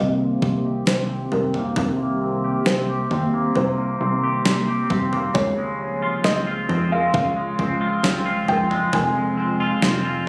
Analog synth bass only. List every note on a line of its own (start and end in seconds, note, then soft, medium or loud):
0.00 0.37 C2 medium
0.42 0.82 C2 medium
0.87 1.27 C2 loud
1.32 1.71 C2 medium
1.77 2.56 C2 medium
2.67 3.06 C2 medium
3.11 3.50 D#2 medium
3.56 3.95 C2 medium
4.01 4.40 C2 medium
4.45 4.85 C2 medium
4.90 5.30 C2 medium
5.35 6.14 C#2 medium
6.25 6.64 C#2 medium
6.69 7.09 F2 medium
7.14 7.53 C#2 loud
7.59 7.98 C#2 medium
8.03 8.43 C#2 medium
8.48 8.88 C#2 loud
8.93 9.72 F1 medium
9.83 10.22 F1 medium